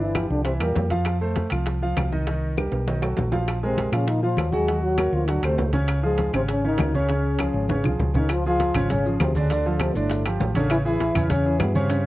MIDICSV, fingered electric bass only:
0, 0, Header, 1, 2, 480
1, 0, Start_track
1, 0, Key_signature, -5, "major"
1, 0, Tempo, 301054
1, 1700, Time_signature, 4, 2, 24, 8
1, 19228, End_track
2, 0, Start_track
2, 0, Title_t, "Fingered electric bass"
2, 0, Program_c, 0, 33
2, 0, Note_on_c, 0, 31, 83
2, 400, Note_off_c, 0, 31, 0
2, 484, Note_on_c, 0, 36, 81
2, 938, Note_off_c, 0, 36, 0
2, 963, Note_on_c, 0, 40, 73
2, 1194, Note_off_c, 0, 40, 0
2, 1210, Note_on_c, 0, 41, 90
2, 2330, Note_off_c, 0, 41, 0
2, 2416, Note_on_c, 0, 36, 89
2, 3090, Note_off_c, 0, 36, 0
2, 3139, Note_on_c, 0, 36, 87
2, 4256, Note_off_c, 0, 36, 0
2, 4334, Note_on_c, 0, 35, 81
2, 5010, Note_off_c, 0, 35, 0
2, 5058, Note_on_c, 0, 34, 87
2, 6177, Note_off_c, 0, 34, 0
2, 6252, Note_on_c, 0, 46, 83
2, 6931, Note_off_c, 0, 46, 0
2, 6962, Note_on_c, 0, 39, 94
2, 8090, Note_off_c, 0, 39, 0
2, 8173, Note_on_c, 0, 38, 83
2, 8628, Note_off_c, 0, 38, 0
2, 8650, Note_on_c, 0, 38, 75
2, 8880, Note_off_c, 0, 38, 0
2, 8890, Note_on_c, 0, 37, 96
2, 10014, Note_off_c, 0, 37, 0
2, 10092, Note_on_c, 0, 32, 84
2, 10772, Note_off_c, 0, 32, 0
2, 10831, Note_on_c, 0, 37, 99
2, 11944, Note_off_c, 0, 37, 0
2, 12020, Note_on_c, 0, 32, 78
2, 12472, Note_off_c, 0, 32, 0
2, 12503, Note_on_c, 0, 36, 71
2, 12730, Note_off_c, 0, 36, 0
2, 12748, Note_on_c, 0, 37, 92
2, 13861, Note_off_c, 0, 37, 0
2, 13951, Note_on_c, 0, 32, 79
2, 14619, Note_off_c, 0, 32, 0
2, 14677, Note_on_c, 0, 38, 97
2, 15782, Note_off_c, 0, 38, 0
2, 15867, Note_on_c, 0, 31, 86
2, 16534, Note_off_c, 0, 31, 0
2, 16578, Note_on_c, 0, 33, 86
2, 17690, Note_off_c, 0, 33, 0
2, 17778, Note_on_c, 0, 40, 97
2, 18447, Note_off_c, 0, 40, 0
2, 18492, Note_on_c, 0, 43, 91
2, 19228, Note_off_c, 0, 43, 0
2, 19228, End_track
0, 0, End_of_file